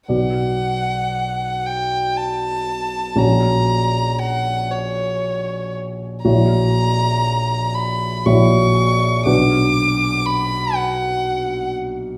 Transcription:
0.08 3.13 B1 soft
0.08 3.13 B3 soft
0.08 3.14 F#4 soft
0.08 3.13 D5 soft
0.08 1.68 F#5 medium
1.66 2.19 G5 soft
2.17 3.20 A5 medium
3.16 6.20 A#1 soft
3.16 6.21 C#4 soft
3.16 6.21 F#4 soft
3.16 6.21 C#5 soft
3.16 4.20 A#5 medium
4.19 4.72 F#5 medium
4.71 5.75 C#5 soft
6.24 8.23 A#1 soft
6.24 8.23 E4 soft
6.24 8.23 F#4 soft
6.24 8.23 C#5 soft
6.24 7.76 A#5 medium
7.75 8.27 B5 medium
8.26 9.24 A#1 soft
8.26 9.24 E4 soft
8.26 9.24 F#4 soft
8.26 9.24 C#5 soft
8.26 9.25 C#6 medium
9.25 12.18 B1 soft
9.25 12.18 D4 soft
9.25 12.18 F#4 soft
9.25 12.18 B4 soft
9.25 10.27 D6 medium
10.26 10.77 B5 medium
10.75 11.73 F#5 medium

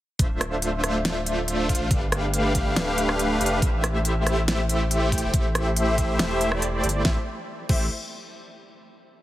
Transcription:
0.19 1.79 D1 loud
0.19 0.81 A3 medium
0.19 0.81 D4 medium
0.19 0.81 F4 medium
0.19 0.81 C5 medium
0.19 0.81 E5 medium
0.19 kick loud
0.19 closed hi-hat medium
0.41 cross-stick medium
0.41 closed hi-hat medium
0.62 closed hi-hat medium
0.84 1.67 A3 medium
0.84 1.67 D4 medium
0.84 1.67 F4 medium
0.84 1.67 C5 medium
0.84 1.67 E5 loud
0.84 cross-stick medium
0.84 closed hi-hat medium
1.05 snare loud
1.05 closed hi-hat medium
1.26 closed hi-hat medium
1.48 closed hi-hat medium
1.69 1.88 A3 loud
1.69 1.88 D4 medium
1.69 1.88 F4 medium
1.69 1.88 F5 loud
1.69 kick medium
1.69 closed hi-hat medium
1.75 closed hi-hat medium
1.80 1.90 A1 loud
1.91 2.75 G1 loud
1.91 2.52 A3 medium
1.91 2.52 D4 medium
1.91 2.52 G4 medium
1.91 2.52 B4 medium
1.91 2.52 F5 loud
1.91 kick loud
1.91 closed hi-hat medium
2.12 cross-stick medium
2.12 closed hi-hat medium
2.34 closed hi-hat medium
2.55 3.60 A3 loud
2.55 3.60 D4 medium
2.55 3.60 G4 medium
2.55 kick medium
2.55 closed hi-hat medium
2.76 3.39 D1 loud
2.76 snare loud
2.76 closed hi-hat medium
2.98 closed hi-hat medium
3.09 cross-stick medium
3.19 closed hi-hat medium
3.41 3.60 F1 medium
3.41 closed hi-hat medium
3.46 closed hi-hat medium
3.62 5.22 A1 loud
3.62 4.24 E4 medium
3.62 4.24 C5 medium
3.62 kick loud
3.62 closed hi-hat medium
3.84 cross-stick medium
3.84 closed hi-hat medium
4.05 closed hi-hat medium
4.26 5.10 A3 medium
4.26 5.10 E4 medium
4.26 5.10 G4 medium
4.26 5.10 C5 medium
4.26 5.10 E5 loud
4.26 cross-stick medium
4.26 closed hi-hat medium
4.48 snare loud
4.48 closed hi-hat medium
4.69 closed hi-hat medium
4.91 closed hi-hat medium
5.12 5.31 A3 loud
5.12 5.31 E4 medium
5.12 5.31 G4 loud
5.12 5.31 C5 medium
5.12 5.31 G5 loud
5.12 kick medium
5.12 closed hi-hat medium
5.18 closed hi-hat medium
5.23 5.33 E1 loud
5.34 6.18 A1 loud
5.34 5.95 A3 loud
5.34 5.95 E4 medium
5.34 5.95 C5 medium
5.34 5.95 E5 loud
5.34 kick loud
5.34 closed hi-hat medium
5.55 cross-stick medium
5.55 closed hi-hat medium
5.76 closed hi-hat medium
5.98 6.50 A3 loud
5.98 6.50 E4 medium
5.98 6.50 G4 medium
5.98 6.50 C5 medium
5.98 6.50 E5 loud
5.98 kick medium
5.98 closed hi-hat medium
6.19 6.82 E1 loud
6.19 snare loud
6.19 closed hi-hat medium
6.41 closed hi-hat medium
6.52 7.03 A3 medium
6.52 7.03 E4 medium
6.52 7.03 G4 medium
6.52 7.02 C5 medium
6.52 7.03 D5 medium
6.52 cross-stick medium
6.62 closed hi-hat medium
6.84 7.03 G1 medium
6.84 closed hi-hat soft
6.89 closed hi-hat medium
7.05 7.17 A1 loud
7.05 7.17 A3 medium
7.05 7.17 E4 medium
7.05 7.17 G4 medium
7.05 7.17 E5 loud
7.05 kick loud
7.05 snare medium
7.69 7.89 A1 medium
7.69 7.85 A3 medium
7.69 7.85 E4 medium
7.69 7.85 G4 medium
7.69 7.85 C5 medium
7.69 7.85 E5 loud
7.69 kick loud
7.69 crash medium

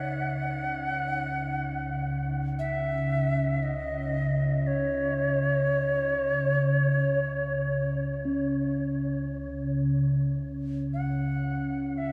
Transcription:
0.00 12.12 C#2 medium
0.00 12.12 C#3 medium
0.00 5.21 D#4 soft
0.00 2.31 F#5 medium
2.59 3.64 E5 medium
3.63 4.68 D#5 medium
4.67 7.89 C#5 medium
8.25 12.12 C#4 soft
10.94 11.99 F#5 medium
11.98 12.12 E5 medium

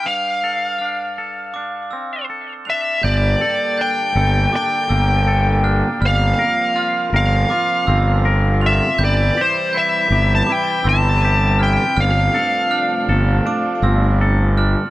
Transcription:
0.03 1.92 G2 soft
0.03 2.26 F5 soft
0.03 0.77 F6 medium
0.44 1.17 A4 soft
0.79 1.55 D4 soft
0.79 1.54 F6 soft
1.18 2.29 A4 soft
1.54 2.66 D4 soft
1.54 1.91 D6 soft
1.91 3.04 C4 soft
1.91 2.66 E6 soft
2.30 3.04 A4 soft
2.65 3.04 D4 soft
2.65 3.03 F7 soft
2.70 3.04 E5 soft
3.03 3.34 G1 medium
3.03 4.90 G2 medium
3.03 5.99 D3 soft
3.03 8.96 A#3 soft
3.03 5.99 G4 medium
3.03 5.99 A4 soft
3.03 3.81 D5 medium
3.03 3.76 G6 medium
3.41 4.15 A4 medium
3.77 4.52 D4 medium
3.77 4.55 G5 medium
3.77 4.52 G6 medium
4.15 4.46 G1 medium
4.15 5.26 A4 medium
4.53 5.63 D4 soft
4.53 6.08 G5 medium
4.53 4.90 D6 medium
4.89 5.82 G1 medium
4.89 6.02 A#3 medium
4.89 5.64 E6 soft
5.28 6.02 A4 medium
5.64 6.01 D4 medium
5.64 6.01 F6 medium
6.01 6.32 G1 medium
6.01 14.90 C3 soft
6.01 8.97 F3 soft
6.01 7.87 G3 medium
6.01 8.97 F4 medium
6.01 6.75 F6 medium
6.06 7.15 F5 medium
6.39 7.12 A#4 medium
6.76 7.50 F4 medium
6.76 7.50 F6 medium
7.12 7.43 G1 medium
7.12 8.24 A#4 medium
7.12 8.60 F5 medium
7.50 8.61 F4 medium
7.50 7.88 D6 medium
7.87 8.79 G1 medium
7.87 10.86 C4 soft
7.87 8.62 E6 medium
8.25 8.99 A#4 medium
8.61 8.99 F4 medium
8.61 8.99 F7 medium
8.66 9.03 E5 medium
8.99 9.29 G1 medium
8.99 11.94 E3 soft
8.99 10.86 G3 medium
8.99 11.94 G3 soft
8.99 11.94 E4 medium
8.99 9.72 G6 medium
9.05 9.40 D5 medium
9.37 10.11 G4 medium
9.37 9.77 C5 medium
9.73 10.49 E4 medium
9.73 10.48 G6 medium
9.77 10.33 E5 medium
10.10 10.41 G1 medium
10.10 11.23 G4 medium
10.35 10.52 A5 medium
10.47 11.59 E4 medium
10.47 10.85 D6 medium
10.52 10.88 G5 medium
10.84 11.77 G1 medium
10.84 11.97 C4 medium
10.84 11.59 E6 medium
10.89 11.62 A5 medium
11.25 11.98 G4 medium
11.59 11.97 E4 medium
11.59 12.00 G5 medium
11.59 11.95 F6 medium
11.97 12.28 G1 medium
11.97 13.83 G2 medium
11.97 14.90 F3 medium
11.97 14.90 A3 medium
11.97 14.90 D4 medium
11.97 14.18 F5 medium
11.97 12.70 F6 medium
12.34 13.08 A4 medium
12.71 13.45 D4 medium
12.71 13.46 F6 medium
13.09 13.39 G1 medium
13.09 14.20 A4 medium
13.46 14.57 D4 medium
13.46 13.84 D6 medium
13.82 14.74 G1 medium
13.82 14.90 C4 medium
13.82 14.58 E6 medium
14.21 14.90 A4 medium
14.58 14.90 D4 medium
14.58 14.90 F6 medium

